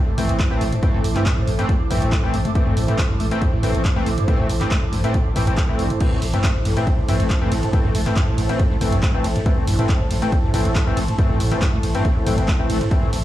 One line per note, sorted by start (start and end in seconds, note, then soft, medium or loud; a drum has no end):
0.00 5.99 A2 medium
0.00 13.24 E4 medium
0.00 13.24 A4 medium
0.00 13.24 C5 medium
0.00 6.78 D6 medium
0.08 0.17 A1 medium
0.08 0.13 G2 medium
0.18 0.29 A1 loud
0.18 0.37 E3 medium
0.18 0.24 A3 medium
0.18 0.37 A3 medium
0.18 0.37 C4 loud
0.18 mid tom medium
0.18 open hi-hat loud
0.29 0.39 A1 medium
0.29 closed hi-hat medium
0.40 0.49 G2 medium
0.40 kick loud
0.40 clap loud
0.40 closed hi-hat medium
0.51 0.60 A1 medium
0.51 0.74 A2 loud
0.51 0.62 E3 medium
0.51 0.62 A3 medium
0.51 0.62 C4 loud
0.61 0.72 A1 loud
0.61 open hi-hat loud
0.72 0.76 A#2 medium
0.72 closed hi-hat medium
0.72 mid tom medium
0.83 0.89 G2 medium
0.83 1.02 E3 medium
0.83 1.02 A3 medium
0.83 1.02 C4 loud
0.83 kick loud
0.83 closed hi-hat medium
0.94 1.04 A1 medium
0.94 1.00 A3 medium
0.94 mid tom medium
1.04 1.15 A1 loud
1.04 open hi-hat loud
1.16 1.24 G2 medium
1.16 1.27 E3 medium
1.16 1.27 A3 medium
1.16 1.27 C4 medium
1.16 clap soft
1.16 closed hi-hat medium
1.16 mid tom medium
1.26 1.49 A2 loud
1.26 kick loud
1.26 clap loud
1.26 closed hi-hat medium
1.37 1.47 A1 medium
1.37 mid tom medium
1.47 1.59 A1 loud
1.47 1.51 A#2 medium
1.47 open hi-hat medium
1.59 1.64 G2 medium
1.59 1.70 E3 loud
1.59 1.70 A3 medium
1.59 1.70 C4 loud
1.59 closed hi-hat medium
1.69 1.75 A3 medium
1.69 kick loud
1.69 closed hi-hat medium
1.80 1.90 A1 medium
1.91 2.01 A1 loud
1.91 2.00 G2 medium
1.91 2.10 E3 medium
1.91 2.10 A3 medium
1.91 2.10 C4 medium
1.91 mid tom medium
1.91 open hi-hat loud
2.02 2.12 A1 medium
2.02 2.25 A2 loud
2.02 closed hi-hat medium
2.12 kick loud
2.12 clap loud
2.12 closed hi-hat medium
2.23 2.33 A1 medium
2.23 2.27 A#2 medium
2.23 2.35 E3 medium
2.23 2.35 A3 medium
2.23 2.35 C4 loud
2.34 2.45 A1 loud
2.34 2.40 G2 medium
2.34 open hi-hat medium
2.45 2.51 A3 medium
2.45 closed hi-hat medium
2.45 mid tom medium
2.55 2.75 E3 medium
2.55 2.75 A3 medium
2.55 2.75 C4 loud
2.55 kick loud
2.55 closed hi-hat medium
2.67 2.76 A1 medium
2.67 2.75 G2 medium
2.67 mid tom loud
2.77 2.88 A1 loud
2.77 3.00 A2 loud
2.77 open hi-hat loud
2.88 3.00 E3 medium
2.88 3.00 A3 medium
2.88 3.00 C4 loud
2.88 closed hi-hat medium
2.88 mid tom medium
2.98 3.02 A#2 medium
2.98 kick loud
2.98 clap loud
2.98 closed hi-hat medium
3.10 3.19 A1 medium
3.10 3.15 G2 medium
3.10 mid tom medium
3.20 3.31 A1 loud
3.20 3.26 A3 medium
3.20 open hi-hat medium
3.31 3.43 E3 loud
3.31 3.43 A3 medium
3.31 3.43 C4 loud
3.31 closed hi-hat medium
3.42 3.51 G2 medium
3.42 kick loud
3.42 closed hi-hat medium
3.53 3.63 A1 medium
3.53 3.76 A2 loud
3.63 3.74 A1 loud
3.63 3.83 E3 medium
3.63 3.83 A3 medium
3.63 3.83 C4 loud
3.63 mid tom medium
3.63 open hi-hat loud
3.75 3.85 A1 medium
3.75 3.78 A#2 medium
3.75 closed hi-hat medium
3.85 3.91 G2 medium
3.85 kick loud
3.85 clap loud
3.85 closed hi-hat medium
3.96 4.06 A1 medium
3.96 4.08 E3 loud
3.96 4.08 A3 medium
3.96 4.02 A3 medium
3.96 4.08 C4 loud
4.06 4.18 A1 loud
4.06 open hi-hat medium
4.18 4.26 G2 medium
4.18 closed hi-hat medium
4.18 mid tom medium
4.28 4.51 A2 loud
4.28 4.47 E3 medium
4.28 4.47 A3 medium
4.28 4.47 C4 loud
4.28 kick loud
4.28 closed hi-hat medium
4.39 4.49 A1 medium
4.39 mid tom medium
4.49 4.61 A1 loud
4.49 4.53 A#2 medium
4.49 open hi-hat loud
4.61 4.67 G2 medium
4.61 4.72 E3 medium
4.61 4.72 A3 medium
4.61 4.72 C4 medium
4.61 clap soft
4.61 closed hi-hat medium
4.61 mid tom medium
4.71 4.77 A3 medium
4.71 kick loud
4.71 clap loud
4.71 closed hi-hat medium
4.82 4.92 A1 medium
4.82 mid tom medium
4.93 5.04 A1 loud
4.93 5.02 G2 medium
4.93 open hi-hat medium
5.04 5.27 A2 loud
5.04 5.16 E3 loud
5.04 5.16 A3 medium
5.04 5.16 C4 loud
5.04 closed hi-hat medium
5.14 kick loud
5.14 closed hi-hat medium
5.26 5.35 A1 medium
5.26 5.29 A#2 medium
5.36 5.47 A1 loud
5.36 5.42 A2 medium
5.36 5.46 E3 medium
5.36 5.46 A3 medium
5.36 5.46 C4 medium
5.36 mid tom medium
5.36 open hi-hat loud
5.47 5.57 A1 medium
5.47 5.53 A2 medium
5.47 5.59 E3 medium
5.47 5.59 A3 medium
5.47 5.59 C4 medium
5.47 closed hi-hat medium
5.57 kick loud
5.57 clap loud
5.57 closed hi-hat medium
5.69 5.78 A1 medium
5.69 5.80 A2 medium
5.69 5.88 E3 medium
5.69 5.88 A3 medium
5.69 5.88 C4 medium
5.79 5.90 A1 medium
5.79 5.88 G2 medium
5.79 open hi-hat medium
5.90 closed hi-hat medium
5.90 mid tom medium
6.00 6.24 A2 loud
6.00 13.24 A2 medium
6.00 6.20 E3 medium
6.00 6.20 A3 medium
6.00 6.20 C4 loud
6.00 kick loud
6.00 closed hi-hat medium
6.00 crash medium
6.12 6.22 A1 medium
6.12 mid tom medium
6.22 6.33 A1 loud
6.22 6.26 A#2 medium
6.22 open hi-hat loud
6.22 ride medium
6.33 6.39 G2 medium
6.33 6.45 E3 medium
6.33 6.45 A3 medium
6.33 6.45 C4 medium
6.33 closed hi-hat medium
6.33 mid tom medium
6.44 6.50 A3 medium
6.44 kick loud
6.44 clap loud
6.44 closed hi-hat medium
6.55 6.65 A1 medium
6.55 mid tom medium
6.65 6.76 A1 loud
6.65 6.75 G2 medium
6.65 open hi-hat medium
6.65 ride medium
6.76 7.00 A2 loud
6.76 6.88 E3 loud
6.76 6.88 A3 medium
6.76 6.88 C4 loud
6.76 13.24 A5 medium
6.76 closed hi-hat medium
6.87 kick loud
6.87 closed hi-hat medium
6.98 7.08 A1 medium
6.98 7.02 A#2 medium
7.08 7.19 A1 loud
7.08 7.15 G2 medium
7.08 7.28 E3 medium
7.08 7.28 A3 medium
7.08 7.28 C4 loud
7.08 mid tom medium
7.08 open hi-hat loud
7.08 ride medium
7.20 7.30 A1 medium
7.20 7.26 A3 medium
7.20 closed hi-hat medium
7.30 kick loud
7.30 clap loud
7.30 closed hi-hat medium
7.41 7.51 A1 medium
7.41 7.50 G2 medium
7.41 7.53 E3 loud
7.41 7.53 A3 medium
7.41 7.53 C4 loud
7.52 7.63 A1 loud
7.52 7.75 A2 loud
7.52 open hi-hat loud
7.52 ride medium
7.63 closed hi-hat medium
7.63 mid tom medium
7.73 7.77 A#2 medium
7.73 7.93 E3 medium
7.73 7.93 A3 medium
7.73 7.93 C4 loud
7.73 kick loud
7.73 closed hi-hat medium
7.84 7.94 A1 medium
7.84 7.90 G2 medium
7.84 mid tom medium
7.95 8.06 A1 loud
7.95 8.01 A3 medium
7.95 open hi-hat loud
7.95 ride medium
8.06 8.18 E3 medium
8.06 8.18 A3 medium
8.06 8.18 C4 loud
8.06 clap soft
8.06 closed hi-hat medium
8.06 mid tom medium
8.16 8.26 G2 medium
8.16 kick loud
8.16 clap loud
8.16 closed hi-hat medium
8.28 8.37 A1 medium
8.28 8.51 A2 loud
8.28 mid tom medium
8.38 8.49 A1 loud
8.38 open hi-hat loud
8.38 ride medium
8.49 8.53 A#2 medium
8.49 8.61 E3 loud
8.49 8.61 A3 medium
8.49 8.61 C4 loud
8.49 closed hi-hat medium
8.60 8.66 G2 medium
8.60 kick loud
8.60 closed hi-hat medium
8.71 8.81 A1 medium
8.71 8.77 A3 medium
8.81 8.92 A1 loud
8.81 9.01 E3 medium
8.81 9.01 A3 medium
8.81 9.01 C4 loud
8.81 mid tom medium
8.81 open hi-hat loud
8.81 ride medium
8.92 9.03 A1 medium
8.92 9.01 G2 medium
8.92 closed hi-hat medium
9.03 9.26 A2 loud
9.03 kick loud
9.03 clap loud
9.03 closed hi-hat medium
9.14 9.24 A1 medium
9.14 9.26 E3 loud
9.14 9.26 A3 medium
9.14 9.26 C4 loud
9.24 9.35 A1 loud
9.24 9.28 A#2 medium
9.24 open hi-hat loud
9.24 ride medium
9.36 9.41 G2 medium
9.36 closed hi-hat medium
9.36 mid tom medium
9.46 9.65 E3 medium
9.46 9.52 A3 medium
9.46 9.65 A3 medium
9.46 9.65 C4 loud
9.46 kick loud
9.46 closed hi-hat medium
9.57 9.67 A1 medium
9.57 mid tom medium
9.67 9.79 A1 loud
9.67 9.77 G2 medium
9.67 open hi-hat loud
9.67 ride medium
9.79 10.02 A2 loud
9.79 9.90 E3 medium
9.79 9.90 A3 medium
9.79 9.90 C4 loud
9.79 closed hi-hat medium
9.79 mid tom medium
9.89 kick loud
9.89 clap loud
9.89 closed hi-hat medium
10.00 10.10 A1 medium
10.00 10.04 A#2 medium
10.00 mid tom loud
10.11 10.22 A1 loud
10.11 10.17 G2 medium
10.11 open hi-hat loud
10.11 ride medium
10.22 10.34 E3 loud
10.22 10.34 A3 medium
10.22 10.28 A3 medium
10.22 10.34 C4 loud
10.22 closed hi-hat medium
10.32 kick loud
10.32 closed hi-hat medium
10.44 10.53 A1 medium
10.44 10.52 G2 medium
10.54 10.65 A1 loud
10.54 10.77 A2 loud
10.54 10.73 E3 medium
10.54 10.73 A3 medium
10.54 10.73 C4 loud
10.54 mid tom medium
10.54 open hi-hat loud
10.54 ride medium
10.65 10.75 A1 medium
10.65 closed hi-hat medium
10.75 10.79 A#2 medium
10.75 kick loud
10.75 clap loud
10.75 closed hi-hat medium
10.87 10.96 A1 medium
10.87 10.92 G2 medium
10.87 10.98 E3 loud
10.87 10.98 A3 medium
10.87 10.98 C4 loud
10.97 11.08 A1 loud
10.97 11.03 A3 medium
10.97 open hi-hat loud
10.97 ride medium
11.08 closed hi-hat medium
11.08 mid tom medium
11.18 11.28 G2 medium
11.18 11.38 E3 medium
11.18 11.38 A3 medium
11.18 11.38 C4 loud
11.18 kick loud
11.18 closed hi-hat medium
11.30 11.40 A1 medium
11.30 11.53 A2 loud
11.30 mid tom loud
11.40 11.51 A1 loud
11.40 open hi-hat loud
11.40 ride medium
11.51 11.55 A#2 medium
11.51 11.63 E3 medium
11.51 11.63 A3 medium
11.51 11.63 C4 loud
11.51 clap soft
11.51 closed hi-hat medium
11.51 mid tom medium
11.62 11.68 G2 medium
11.62 kick loud
11.62 clap loud
11.62 closed hi-hat medium
11.73 11.83 A1 medium
11.73 11.79 A3 medium
11.73 mid tom medium
11.83 11.94 A1 loud
11.83 open hi-hat medium
11.83 ride medium
11.95 12.03 G2 medium
11.95 12.06 E3 loud
11.95 12.06 A3 medium
11.95 12.06 C4 loud
11.95 closed hi-hat medium
12.05 12.28 A2 loud
12.05 kick loud
12.05 closed hi-hat medium
12.16 12.26 A1 medium
12.26 12.37 A1 loud
12.26 12.36 E3 medium
12.26 12.39 G3 loud
12.26 12.36 A3 medium
12.26 12.36 C4 loud
12.26 mid tom medium
12.26 open hi-hat loud
12.26 ride medium
12.38 12.48 A1 medium
12.38 12.44 A2 medium
12.38 12.49 E3 medium
12.38 12.49 A3 medium
12.38 12.49 C4 loud
12.38 closed hi-hat medium
12.48 12.52 A3 medium
12.48 kick loud
12.48 clap loud
12.48 closed hi-hat medium
12.59 12.69 A1 medium
12.59 12.79 E3 medium
12.59 12.79 A3 medium
12.59 12.79 C4 medium
12.70 12.81 A1 loud
12.70 12.79 A3 medium
12.70 open hi-hat loud
12.70 ride medium
12.81 12.84 A#2 medium
12.81 closed hi-hat medium
12.81 mid tom medium
12.91 13.11 E3 medium
12.91 13.11 A3 medium
12.91 13.11 C4 loud
12.91 kick loud
12.91 closed hi-hat medium
13.02 13.12 A1 medium
13.02 13.06 A#2 medium
13.02 mid tom medium
13.13 13.24 A1 loud
13.13 13.19 G2 medium
13.13 open hi-hat loud
13.13 ride medium